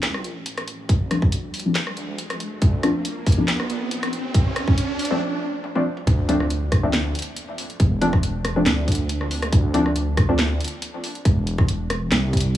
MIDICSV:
0, 0, Header, 1, 6, 480
1, 0, Start_track
1, 0, Key_signature, -1, "minor"
1, 0, Tempo, 431655
1, 992, Time_signature, 4, 2, 24, 8
1, 13980, End_track
2, 0, Start_track
2, 0, Title_t, "Synth stab"
2, 0, Program_c, 0, 62
2, 1229, Note_on_c, 0, 53, 95
2, 1229, Note_on_c, 0, 57, 90
2, 1229, Note_on_c, 0, 60, 85
2, 1230, Note_on_c, 0, 62, 108
2, 1336, Note_off_c, 0, 53, 0
2, 1336, Note_off_c, 0, 57, 0
2, 1336, Note_off_c, 0, 60, 0
2, 1336, Note_off_c, 0, 62, 0
2, 1838, Note_on_c, 0, 57, 74
2, 1839, Note_on_c, 0, 53, 81
2, 1839, Note_on_c, 0, 60, 77
2, 1839, Note_on_c, 0, 62, 90
2, 3124, Note_off_c, 0, 53, 0
2, 3124, Note_off_c, 0, 57, 0
2, 3124, Note_off_c, 0, 60, 0
2, 3124, Note_off_c, 0, 62, 0
2, 3151, Note_on_c, 0, 53, 93
2, 3151, Note_on_c, 0, 57, 85
2, 3151, Note_on_c, 0, 60, 86
2, 3151, Note_on_c, 0, 62, 107
2, 3315, Note_off_c, 0, 53, 0
2, 3315, Note_off_c, 0, 57, 0
2, 3315, Note_off_c, 0, 60, 0
2, 3315, Note_off_c, 0, 62, 0
2, 3759, Note_on_c, 0, 60, 70
2, 3759, Note_on_c, 0, 62, 85
2, 3760, Note_on_c, 0, 53, 77
2, 3760, Note_on_c, 0, 57, 71
2, 3912, Note_off_c, 0, 53, 0
2, 3912, Note_off_c, 0, 57, 0
2, 3912, Note_off_c, 0, 60, 0
2, 3912, Note_off_c, 0, 62, 0
2, 5679, Note_on_c, 0, 53, 84
2, 5679, Note_on_c, 0, 57, 77
2, 5679, Note_on_c, 0, 60, 80
2, 5680, Note_on_c, 0, 62, 92
2, 6374, Note_off_c, 0, 53, 0
2, 6374, Note_off_c, 0, 57, 0
2, 6374, Note_off_c, 0, 60, 0
2, 6374, Note_off_c, 0, 62, 0
2, 6398, Note_on_c, 0, 53, 80
2, 6398, Note_on_c, 0, 57, 74
2, 6398, Note_on_c, 0, 60, 77
2, 6399, Note_on_c, 0, 62, 88
2, 6491, Note_off_c, 0, 53, 0
2, 6491, Note_off_c, 0, 57, 0
2, 6491, Note_off_c, 0, 60, 0
2, 6491, Note_off_c, 0, 62, 0
2, 6990, Note_on_c, 0, 53, 98
2, 6990, Note_on_c, 0, 57, 88
2, 6990, Note_on_c, 0, 60, 84
2, 6990, Note_on_c, 0, 62, 109
2, 7154, Note_off_c, 0, 53, 0
2, 7154, Note_off_c, 0, 57, 0
2, 7154, Note_off_c, 0, 60, 0
2, 7154, Note_off_c, 0, 62, 0
2, 7599, Note_on_c, 0, 57, 71
2, 7599, Note_on_c, 0, 60, 73
2, 7599, Note_on_c, 0, 62, 84
2, 7600, Note_on_c, 0, 53, 79
2, 7752, Note_off_c, 0, 53, 0
2, 7752, Note_off_c, 0, 57, 0
2, 7752, Note_off_c, 0, 60, 0
2, 7752, Note_off_c, 0, 62, 0
2, 8911, Note_on_c, 0, 53, 93
2, 8911, Note_on_c, 0, 57, 88
2, 8911, Note_on_c, 0, 60, 91
2, 8911, Note_on_c, 0, 62, 113
2, 9017, Note_off_c, 0, 53, 0
2, 9017, Note_off_c, 0, 57, 0
2, 9017, Note_off_c, 0, 60, 0
2, 9017, Note_off_c, 0, 62, 0
2, 9520, Note_on_c, 0, 53, 82
2, 9520, Note_on_c, 0, 57, 79
2, 9520, Note_on_c, 0, 60, 76
2, 9520, Note_on_c, 0, 62, 93
2, 10805, Note_off_c, 0, 53, 0
2, 10805, Note_off_c, 0, 57, 0
2, 10805, Note_off_c, 0, 60, 0
2, 10805, Note_off_c, 0, 62, 0
2, 10831, Note_on_c, 0, 53, 95
2, 10831, Note_on_c, 0, 57, 87
2, 10831, Note_on_c, 0, 60, 87
2, 10831, Note_on_c, 0, 62, 105
2, 10995, Note_off_c, 0, 53, 0
2, 10995, Note_off_c, 0, 57, 0
2, 10995, Note_off_c, 0, 60, 0
2, 10995, Note_off_c, 0, 62, 0
2, 11440, Note_on_c, 0, 53, 78
2, 11440, Note_on_c, 0, 57, 70
2, 11440, Note_on_c, 0, 60, 70
2, 11440, Note_on_c, 0, 62, 88
2, 11592, Note_off_c, 0, 53, 0
2, 11592, Note_off_c, 0, 57, 0
2, 11592, Note_off_c, 0, 60, 0
2, 11592, Note_off_c, 0, 62, 0
2, 13980, End_track
3, 0, Start_track
3, 0, Title_t, "Detuned saw bass"
3, 0, Program_c, 1, 39
3, 0, Note_on_c, 1, 38, 93
3, 493, Note_off_c, 1, 38, 0
3, 510, Note_on_c, 1, 33, 98
3, 1453, Note_off_c, 1, 33, 0
3, 1471, Note_on_c, 1, 38, 95
3, 1933, Note_off_c, 1, 38, 0
3, 2190, Note_on_c, 1, 38, 97
3, 2893, Note_off_c, 1, 38, 0
3, 2911, Note_on_c, 1, 38, 99
3, 4333, Note_off_c, 1, 38, 0
3, 4350, Note_on_c, 1, 33, 101
3, 5293, Note_off_c, 1, 33, 0
3, 5311, Note_on_c, 1, 38, 96
3, 5773, Note_off_c, 1, 38, 0
3, 6751, Note_on_c, 1, 38, 100
3, 7214, Note_off_c, 1, 38, 0
3, 7230, Note_on_c, 1, 38, 96
3, 7933, Note_off_c, 1, 38, 0
3, 8671, Note_on_c, 1, 28, 99
3, 9613, Note_off_c, 1, 28, 0
3, 9630, Note_on_c, 1, 38, 98
3, 10573, Note_off_c, 1, 38, 0
3, 10592, Note_on_c, 1, 38, 101
3, 11054, Note_off_c, 1, 38, 0
3, 11072, Note_on_c, 1, 38, 100
3, 11774, Note_off_c, 1, 38, 0
3, 12513, Note_on_c, 1, 28, 99
3, 13454, Note_off_c, 1, 28, 0
3, 13474, Note_on_c, 1, 36, 94
3, 13980, Note_off_c, 1, 36, 0
3, 13980, End_track
4, 0, Start_track
4, 0, Title_t, "Impact"
4, 0, Program_c, 2, 103
4, 6751, Note_on_c, 2, 60, 79
4, 8671, Note_off_c, 2, 60, 0
4, 13980, End_track
5, 0, Start_track
5, 0, Title_t, "Riser"
5, 0, Program_c, 3, 103
5, 0, Note_on_c, 3, 60, 81
5, 5791, Note_off_c, 3, 60, 0
5, 13980, End_track
6, 0, Start_track
6, 0, Title_t, "Drums"
6, 31, Note_on_c, 9, 38, 119
6, 31, Note_on_c, 9, 42, 86
6, 143, Note_off_c, 9, 38, 0
6, 143, Note_off_c, 9, 42, 0
6, 160, Note_on_c, 9, 37, 72
6, 271, Note_off_c, 9, 37, 0
6, 271, Note_on_c, 9, 42, 55
6, 382, Note_off_c, 9, 42, 0
6, 510, Note_on_c, 9, 42, 83
6, 621, Note_off_c, 9, 42, 0
6, 639, Note_on_c, 9, 37, 76
6, 639, Note_on_c, 9, 42, 38
6, 751, Note_off_c, 9, 37, 0
6, 751, Note_off_c, 9, 42, 0
6, 751, Note_on_c, 9, 42, 55
6, 862, Note_off_c, 9, 42, 0
6, 990, Note_on_c, 9, 36, 117
6, 991, Note_on_c, 9, 42, 81
6, 1101, Note_off_c, 9, 36, 0
6, 1102, Note_off_c, 9, 42, 0
6, 1232, Note_on_c, 9, 37, 74
6, 1232, Note_on_c, 9, 42, 55
6, 1343, Note_off_c, 9, 37, 0
6, 1343, Note_off_c, 9, 42, 0
6, 1359, Note_on_c, 9, 36, 108
6, 1470, Note_off_c, 9, 36, 0
6, 1470, Note_on_c, 9, 42, 82
6, 1581, Note_off_c, 9, 42, 0
6, 1710, Note_on_c, 9, 46, 89
6, 1774, Note_on_c, 9, 42, 64
6, 1821, Note_off_c, 9, 46, 0
6, 1885, Note_off_c, 9, 42, 0
6, 1950, Note_on_c, 9, 38, 124
6, 1950, Note_on_c, 9, 42, 82
6, 2061, Note_off_c, 9, 38, 0
6, 2061, Note_off_c, 9, 42, 0
6, 2077, Note_on_c, 9, 37, 74
6, 2189, Note_off_c, 9, 37, 0
6, 2189, Note_on_c, 9, 42, 57
6, 2300, Note_off_c, 9, 42, 0
6, 2429, Note_on_c, 9, 42, 85
6, 2540, Note_off_c, 9, 42, 0
6, 2558, Note_on_c, 9, 37, 76
6, 2558, Note_on_c, 9, 42, 38
6, 2670, Note_off_c, 9, 37, 0
6, 2670, Note_off_c, 9, 42, 0
6, 2671, Note_on_c, 9, 42, 55
6, 2782, Note_off_c, 9, 42, 0
6, 2909, Note_on_c, 9, 42, 77
6, 2911, Note_on_c, 9, 36, 126
6, 3021, Note_off_c, 9, 42, 0
6, 3022, Note_off_c, 9, 36, 0
6, 3150, Note_on_c, 9, 37, 80
6, 3150, Note_on_c, 9, 42, 54
6, 3261, Note_off_c, 9, 37, 0
6, 3261, Note_off_c, 9, 42, 0
6, 3390, Note_on_c, 9, 42, 80
6, 3501, Note_off_c, 9, 42, 0
6, 3630, Note_on_c, 9, 46, 88
6, 3631, Note_on_c, 9, 36, 122
6, 3695, Note_on_c, 9, 42, 68
6, 3742, Note_off_c, 9, 36, 0
6, 3742, Note_off_c, 9, 46, 0
6, 3806, Note_off_c, 9, 42, 0
6, 3871, Note_on_c, 9, 38, 127
6, 3871, Note_on_c, 9, 42, 82
6, 3982, Note_off_c, 9, 38, 0
6, 3982, Note_off_c, 9, 42, 0
6, 4000, Note_on_c, 9, 37, 76
6, 4111, Note_off_c, 9, 37, 0
6, 4111, Note_on_c, 9, 42, 56
6, 4223, Note_off_c, 9, 42, 0
6, 4351, Note_on_c, 9, 42, 82
6, 4462, Note_off_c, 9, 42, 0
6, 4480, Note_on_c, 9, 37, 80
6, 4480, Note_on_c, 9, 42, 39
6, 4591, Note_off_c, 9, 37, 0
6, 4591, Note_off_c, 9, 42, 0
6, 4591, Note_on_c, 9, 42, 53
6, 4702, Note_off_c, 9, 42, 0
6, 4830, Note_on_c, 9, 42, 77
6, 4831, Note_on_c, 9, 36, 120
6, 4942, Note_off_c, 9, 42, 0
6, 4943, Note_off_c, 9, 36, 0
6, 5071, Note_on_c, 9, 37, 84
6, 5071, Note_on_c, 9, 42, 52
6, 5182, Note_off_c, 9, 37, 0
6, 5182, Note_off_c, 9, 42, 0
6, 5199, Note_on_c, 9, 36, 106
6, 5310, Note_off_c, 9, 36, 0
6, 5311, Note_on_c, 9, 42, 74
6, 5422, Note_off_c, 9, 42, 0
6, 5551, Note_on_c, 9, 46, 89
6, 5615, Note_on_c, 9, 42, 64
6, 5663, Note_off_c, 9, 46, 0
6, 5726, Note_off_c, 9, 42, 0
6, 6271, Note_on_c, 9, 48, 61
6, 6382, Note_off_c, 9, 48, 0
6, 6398, Note_on_c, 9, 48, 63
6, 6510, Note_off_c, 9, 48, 0
6, 6639, Note_on_c, 9, 45, 82
6, 6750, Note_off_c, 9, 45, 0
6, 6751, Note_on_c, 9, 36, 123
6, 6751, Note_on_c, 9, 42, 81
6, 6862, Note_off_c, 9, 36, 0
6, 6862, Note_off_c, 9, 42, 0
6, 6992, Note_on_c, 9, 42, 57
6, 7103, Note_off_c, 9, 42, 0
6, 7120, Note_on_c, 9, 37, 51
6, 7231, Note_off_c, 9, 37, 0
6, 7232, Note_on_c, 9, 42, 82
6, 7343, Note_off_c, 9, 42, 0
6, 7471, Note_on_c, 9, 36, 111
6, 7471, Note_on_c, 9, 37, 79
6, 7471, Note_on_c, 9, 42, 58
6, 7582, Note_off_c, 9, 36, 0
6, 7582, Note_off_c, 9, 37, 0
6, 7582, Note_off_c, 9, 42, 0
6, 7711, Note_on_c, 9, 38, 122
6, 7711, Note_on_c, 9, 42, 90
6, 7822, Note_off_c, 9, 38, 0
6, 7822, Note_off_c, 9, 42, 0
6, 7951, Note_on_c, 9, 42, 52
6, 7993, Note_off_c, 9, 42, 0
6, 7993, Note_on_c, 9, 42, 71
6, 8031, Note_off_c, 9, 42, 0
6, 8031, Note_on_c, 9, 42, 86
6, 8142, Note_off_c, 9, 42, 0
6, 8190, Note_on_c, 9, 42, 86
6, 8301, Note_off_c, 9, 42, 0
6, 8431, Note_on_c, 9, 46, 98
6, 8542, Note_off_c, 9, 46, 0
6, 8560, Note_on_c, 9, 42, 38
6, 8671, Note_off_c, 9, 42, 0
6, 8671, Note_on_c, 9, 36, 119
6, 8671, Note_on_c, 9, 42, 82
6, 8782, Note_off_c, 9, 36, 0
6, 8782, Note_off_c, 9, 42, 0
6, 8913, Note_on_c, 9, 42, 55
6, 9024, Note_off_c, 9, 42, 0
6, 9039, Note_on_c, 9, 36, 107
6, 9041, Note_on_c, 9, 37, 51
6, 9151, Note_off_c, 9, 36, 0
6, 9152, Note_off_c, 9, 37, 0
6, 9152, Note_on_c, 9, 42, 83
6, 9264, Note_off_c, 9, 42, 0
6, 9392, Note_on_c, 9, 37, 81
6, 9392, Note_on_c, 9, 42, 56
6, 9503, Note_off_c, 9, 37, 0
6, 9503, Note_off_c, 9, 42, 0
6, 9632, Note_on_c, 9, 38, 127
6, 9632, Note_on_c, 9, 42, 88
6, 9744, Note_off_c, 9, 38, 0
6, 9744, Note_off_c, 9, 42, 0
6, 9872, Note_on_c, 9, 36, 62
6, 9873, Note_on_c, 9, 42, 53
6, 9916, Note_off_c, 9, 42, 0
6, 9916, Note_on_c, 9, 42, 67
6, 9952, Note_off_c, 9, 42, 0
6, 9952, Note_on_c, 9, 42, 88
6, 9983, Note_off_c, 9, 36, 0
6, 10063, Note_off_c, 9, 42, 0
6, 10112, Note_on_c, 9, 42, 83
6, 10223, Note_off_c, 9, 42, 0
6, 10240, Note_on_c, 9, 37, 50
6, 10351, Note_off_c, 9, 37, 0
6, 10351, Note_on_c, 9, 46, 94
6, 10463, Note_off_c, 9, 46, 0
6, 10480, Note_on_c, 9, 37, 75
6, 10480, Note_on_c, 9, 42, 38
6, 10591, Note_off_c, 9, 37, 0
6, 10591, Note_off_c, 9, 42, 0
6, 10592, Note_on_c, 9, 36, 127
6, 10592, Note_on_c, 9, 42, 80
6, 10703, Note_off_c, 9, 36, 0
6, 10703, Note_off_c, 9, 42, 0
6, 10832, Note_on_c, 9, 42, 57
6, 10943, Note_off_c, 9, 42, 0
6, 10961, Note_on_c, 9, 37, 54
6, 11072, Note_off_c, 9, 37, 0
6, 11072, Note_on_c, 9, 42, 84
6, 11183, Note_off_c, 9, 42, 0
6, 11312, Note_on_c, 9, 36, 117
6, 11313, Note_on_c, 9, 37, 82
6, 11313, Note_on_c, 9, 42, 53
6, 11423, Note_off_c, 9, 36, 0
6, 11424, Note_off_c, 9, 37, 0
6, 11424, Note_off_c, 9, 42, 0
6, 11552, Note_on_c, 9, 38, 127
6, 11552, Note_on_c, 9, 42, 86
6, 11664, Note_off_c, 9, 38, 0
6, 11664, Note_off_c, 9, 42, 0
6, 11793, Note_on_c, 9, 42, 50
6, 11836, Note_off_c, 9, 42, 0
6, 11836, Note_on_c, 9, 42, 68
6, 11873, Note_off_c, 9, 42, 0
6, 11873, Note_on_c, 9, 42, 85
6, 11984, Note_off_c, 9, 42, 0
6, 12033, Note_on_c, 9, 42, 83
6, 12144, Note_off_c, 9, 42, 0
6, 12273, Note_on_c, 9, 46, 93
6, 12384, Note_off_c, 9, 46, 0
6, 12402, Note_on_c, 9, 42, 37
6, 12513, Note_off_c, 9, 42, 0
6, 12513, Note_on_c, 9, 36, 123
6, 12513, Note_on_c, 9, 42, 80
6, 12624, Note_off_c, 9, 36, 0
6, 12625, Note_off_c, 9, 42, 0
6, 12754, Note_on_c, 9, 42, 55
6, 12865, Note_off_c, 9, 42, 0
6, 12881, Note_on_c, 9, 36, 112
6, 12881, Note_on_c, 9, 37, 53
6, 12992, Note_off_c, 9, 36, 0
6, 12993, Note_off_c, 9, 37, 0
6, 12993, Note_on_c, 9, 42, 78
6, 13104, Note_off_c, 9, 42, 0
6, 13233, Note_on_c, 9, 37, 84
6, 13233, Note_on_c, 9, 42, 56
6, 13344, Note_off_c, 9, 37, 0
6, 13344, Note_off_c, 9, 42, 0
6, 13473, Note_on_c, 9, 38, 127
6, 13473, Note_on_c, 9, 42, 83
6, 13584, Note_off_c, 9, 38, 0
6, 13584, Note_off_c, 9, 42, 0
6, 13713, Note_on_c, 9, 36, 64
6, 13714, Note_on_c, 9, 42, 52
6, 13756, Note_off_c, 9, 42, 0
6, 13756, Note_on_c, 9, 42, 65
6, 13794, Note_off_c, 9, 42, 0
6, 13794, Note_on_c, 9, 42, 82
6, 13824, Note_off_c, 9, 36, 0
6, 13905, Note_off_c, 9, 42, 0
6, 13980, End_track
0, 0, End_of_file